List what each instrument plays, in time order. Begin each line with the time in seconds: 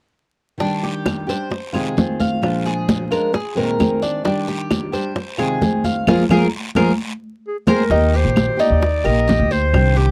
0.58 nylon-string guitar D#3 G3 D4 G4, cuban tres D4, high bongo, high conga, long guiro
0.83 cuban tres G4, high bongo, high conga
1.06 high bongo, high conga, short guiro, claves
1.27 nylon-string guitar G3 D4 G4, cuban tres C5, high conga, short guiro
1.50 muted nylon-string guitar stroke, high bongo, high conga, long guiro
1.73 nylon-string guitar C3 D#3 G#3 C4 F4, cuban tres G#4, high bongo, high conga, claves
1.96 nylon-string guitar D#3 G#3 C4 F4, high bongo, low bongo, high conga, short guiro
2.20 cuban tres F5, high bongo, high conga, short guiro
2.42 nylon-string guitar A#2 F3 G#3 D4 F4, high bongo, high conga, long guiro, claves
2.66 cuban tres G#4, high bongo, high conga
2.88 high bongo, high conga, short guiro
3.11 nylon-string guitar F3 G#3 D4 F4, cuban tres A#4, high conga, short guiro, claves
3.33 cuban tres G#4, muted nylon-string guitar stroke, high bongo, high conga, long guiro
3.55 nylon-string guitar A#2 D#3 G#3 C4 G#4, cuban tres A#4, high bongo, high conga
3.79 nylon-string guitar D#3 G#3 C4 G#4, high bongo, low bongo, high conga, short guiro, claves
4.02 cuban tres D4, high bongo, high conga, short guiro
4.24 nylon-string guitar D#3 G3 D4 G4, cuban tres D4, high bongo, high conga, long guiro
4.48 cuban tres G4, high bongo, high conga
4.71 high bongo, high conga, short guiro, claves
4.92 nylon-string guitar G3 D4 G4, cuban tres C5, high conga, short guiro
5.15 muted nylon-string guitar stroke, high bongo, high conga, long guiro
5.38 nylon-string guitar C3 D#3 G#3 C4 F4, cuban tres G#4, high bongo, high conga, claves
5.61 nylon-string guitar D#3 G#3 C4 F4, high bongo, low bongo, high conga, short guiro
5.84 cuban tres F5, high bongo, high conga, short guiro
6.07 nylon-string guitar F3 G#3 A#3, cuban tres F4 G#4 A#4, low bongo, high conga, long guiro, claves
6.29 nylon-string guitar F3 G#3 A#3, cuban tres F4 G#4 A#4, low bongo, high conga, long guiro, claves
6.75 nylon-string guitar F3 G#3 A#3, cuban tres F4 G#4 A#4, low bongo, high conga, long guiro, claves
7.48 clarinet G#4
7.67 nylon-string guitar G#3 A#3 C4, cuban tres G#4 A#4 C5, clarinet A#4, low bongo, high conga, long guiro, claves
7.90 upright bass D#2, nylon-string guitar D#3 A#3 D#4 G4, cuban tres D#4, high bongo, long guiro
8.14 cuban tres G4, clarinet C5, high bongo, high conga
8.25 upright bass A#1
8.36 high bongo, high conga, short guiro, claves
8.57 nylon-string guitar A#3 D#4 G4, cuban tres D#4, clarinet D5, high conga, short guiro
8.70 upright bass D#2
8.81 muted nylon-string guitar stroke, high bongo, high conga, long guiro
9.04 upright bass A#1, nylon-string guitar A#3 D#4 G4, cuban tres A#4, clarinet D#5, high bongo, high conga, claves
9.28 nylon-string guitar A#3 D#4 G4, cuban tres G4, high bongo, low bongo, high conga, short guiro
9.39 upright bass D2
9.51 cuban tres C5, clarinet C5, high bongo, short guiro
9.73 upright bass C2, nylon-string guitar C3 D#3 G3 D4 G4, high bongo, high conga, long guiro, claves
9.96 cuban tres G4, clarinet G4, high bongo, high conga